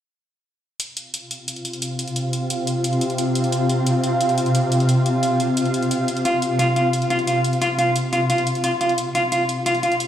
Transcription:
0.80 10.07 C3 medium
0.80 10.07 C4 medium
0.80 10.07 F4 medium
0.80 10.07 F5 medium
0.80 closed hi-hat medium
0.97 closed hi-hat medium
1.14 closed hi-hat medium
1.31 closed hi-hat medium
1.48 closed hi-hat medium
1.56 closed hi-hat soft
1.65 closed hi-hat medium
1.73 closed hi-hat soft
1.82 closed hi-hat medium
1.99 closed hi-hat medium
2.08 closed hi-hat soft
2.16 closed hi-hat medium
2.33 closed hi-hat medium
2.50 closed hi-hat medium
2.67 closed hi-hat medium
2.84 closed hi-hat medium
2.93 closed hi-hat soft
3.01 closed hi-hat medium
3.10 closed hi-hat soft
3.18 closed hi-hat medium
3.35 closed hi-hat medium
3.44 closed hi-hat soft
3.52 closed hi-hat medium
3.69 closed hi-hat medium
3.87 closed hi-hat medium
4.04 closed hi-hat medium
4.21 closed hi-hat medium
4.29 closed hi-hat soft
4.38 closed hi-hat medium
4.46 closed hi-hat soft
4.55 closed hi-hat medium
4.72 closed hi-hat medium
4.80 closed hi-hat soft
4.89 closed hi-hat medium
5.06 closed hi-hat medium
5.23 closed hi-hat medium
5.40 closed hi-hat medium
5.57 closed hi-hat medium
5.66 closed hi-hat soft
5.74 closed hi-hat medium
5.83 closed hi-hat soft
5.91 closed hi-hat medium
6.08 closed hi-hat medium
6.17 closed hi-hat soft
6.25 6.36 F4 medium
6.25 closed hi-hat medium
6.42 closed hi-hat medium
6.59 6.66 F4 loud
6.59 closed hi-hat medium
6.76 6.87 F4 medium
6.76 closed hi-hat medium
6.93 closed hi-hat medium
7.02 closed hi-hat soft
7.10 7.17 F4 medium
7.10 closed hi-hat medium
7.19 closed hi-hat soft
7.27 7.38 F4 medium
7.27 closed hi-hat medium
7.44 closed hi-hat medium
7.53 closed hi-hat soft
7.62 7.68 F4 medium
7.62 closed hi-hat medium
7.79 7.89 F4 medium
7.79 closed hi-hat medium
7.96 closed hi-hat medium
8.13 8.19 F4 medium
8.13 closed hi-hat medium
8.30 8.41 F4 medium
8.30 closed hi-hat medium
8.38 closed hi-hat soft
8.47 closed hi-hat medium
8.55 closed hi-hat soft
8.64 8.70 F4 loud
8.64 closed hi-hat medium
8.81 8.92 F4 medium
8.81 closed hi-hat medium
8.89 closed hi-hat soft
8.98 closed hi-hat medium
9.15 9.21 F4 loud
9.15 closed hi-hat medium
9.32 9.43 F4 medium
9.32 closed hi-hat medium
9.49 closed hi-hat medium
9.66 9.73 F4 loud
9.66 closed hi-hat medium
9.75 closed hi-hat soft
9.83 9.94 F4 medium
9.83 closed hi-hat medium
9.92 closed hi-hat soft
10.00 closed hi-hat medium

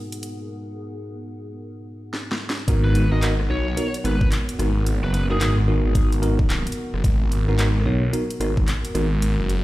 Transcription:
0.00 2.66 G#2 medium
0.00 0.46 G#3 medium
0.00 0.46 B3 medium
0.00 0.50 B3 medium
0.00 2.66 B3 medium
0.00 2.66 D#4 medium
0.00 2.66 F#4 medium
0.00 0.48 G#4 medium
0.00 0.50 G#4 medium
0.00 0.46 A#4 medium
0.00 0.50 A#4 medium
0.00 2.66 A#4 medium
0.00 0.50 F#5 medium
0.12 closed hi-hat medium
0.23 closed hi-hat medium
2.13 snare medium
2.32 snare medium
2.50 snare medium
2.67 3.09 G#1 loud
2.67 9.64 B3 medium
2.67 3.05 B3 loud
2.67 3.05 D#4 medium
2.67 9.64 F#4 medium
2.67 3.05 F#4 medium
2.67 9.64 A#4 medium
2.67 3.05 A#4 loud
2.67 kick loud
2.67 closed hi-hat medium
2.84 3.08 B4 medium
2.95 closed hi-hat medium
3.12 3.48 G#1 loud
3.12 3.18 B3 medium
3.12 3.18 D#4 medium
3.12 3.18 F#4 medium
3.12 3.18 A#4 loud
3.12 3.32 D#5 medium
3.22 3.32 B3 medium
3.22 3.32 D#4 medium
3.22 3.32 F#4 medium
3.22 3.32 A#4 loud
3.22 clap loud
3.22 closed hi-hat medium
3.40 cross-stick medium
3.50 3.75 B1 loud
3.50 3.66 B3 medium
3.50 3.66 D#4 medium
3.50 3.66 F#4 medium
3.50 3.66 C#5 medium
3.50 3.94 C#5 medium
3.77 3.87 B3 medium
3.77 3.87 D#4 medium
3.77 3.87 F#4 medium
3.77 3.87 A#4 loud
3.77 closed hi-hat medium
3.94 closed hi-hat medium
4.04 4.30 G#1 medium
4.04 4.14 B3 medium
4.04 4.14 D#4 medium
4.04 4.14 F#4 medium
4.04 4.14 A#4 loud
4.04 4.28 B4 loud
4.04 cross-stick medium
4.04 closed hi-hat medium
4.21 kick loud
4.32 clap loud
4.32 closed hi-hat medium
4.49 closed hi-hat medium
4.59 5.00 G#1 loud
4.59 4.69 B3 medium
4.59 4.69 D#4 medium
4.59 4.69 F#4 medium
4.59 4.69 A#4 medium
4.59 cross-stick medium
4.59 closed hi-hat medium
4.86 closed hi-hat medium
5.03 5.39 F#1 loud
5.03 5.10 B4 medium
5.14 5.24 B4 medium
5.14 closed hi-hat medium
5.30 5.36 B3 medium
5.30 5.36 D#4 medium
5.30 5.36 F#4 medium
5.30 5.37 G#4 medium
5.30 5.36 A#4 loud
5.40 5.82 G#1 loud
5.40 5.57 B3 medium
5.40 5.57 D#4 medium
5.40 5.57 F#4 medium
5.40 5.52 G#4 medium
5.40 5.57 A#4 medium
5.40 clap loud
5.40 closed hi-hat medium
5.58 cross-stick medium
5.68 6.20 B3 medium
5.68 6.20 D#4 medium
5.68 6.20 F#4 medium
5.68 6.20 A#4 medium
5.84 6.64 G#1 loud
5.95 kick loud
5.95 closed hi-hat medium
6.12 closed hi-hat medium
6.22 6.38 B3 loud
6.22 6.38 D#4 medium
6.22 6.38 F#4 medium
6.22 6.38 A#4 loud
6.22 closed hi-hat medium
6.39 kick loud
6.50 clap loud
6.50 closed hi-hat medium
6.67 closed hi-hat medium
6.72 closed hi-hat medium
6.93 7.02 F#1 loud
6.93 cross-stick soft
7.04 7.46 G#1 loud
7.04 kick loud
7.04 closed hi-hat medium
7.32 closed hi-hat medium
7.48 7.84 G#1 loud
7.48 7.55 B3 loud
7.48 7.55 D#4 medium
7.48 7.55 F#4 medium
7.48 7.55 A#4 loud
7.58 7.69 B3 loud
7.58 7.69 D#4 medium
7.58 7.69 F#4 medium
7.58 7.69 A#4 loud
7.58 clap loud
7.58 closed hi-hat medium
7.81 cross-stick medium
7.85 8.11 B1 loud
7.85 8.02 B3 medium
7.85 8.02 D#4 medium
7.85 8.02 F#4 medium
7.85 8.02 C#5 medium
8.13 8.23 B3 medium
8.13 8.23 D#4 medium
8.13 8.23 F#4 medium
8.13 8.23 A#4 loud
8.13 closed hi-hat medium
8.30 closed hi-hat medium
8.40 8.66 G#1 loud
8.40 8.51 B3 medium
8.40 8.51 D#4 medium
8.40 8.51 F#4 medium
8.40 8.51 A#4 loud
8.40 cross-stick medium
8.40 closed hi-hat medium
8.57 kick loud
8.68 clap loud
8.68 closed hi-hat medium
8.85 closed hi-hat medium
8.95 9.36 G#1 medium
8.95 9.05 B3 medium
8.95 9.05 D#4 medium
8.95 9.05 F#4 medium
8.95 9.05 A#4 medium
8.95 cross-stick medium
8.95 closed hi-hat medium
9.22 closed hi-hat medium
9.39 9.64 F#1 loud
9.50 closed hi-hat medium

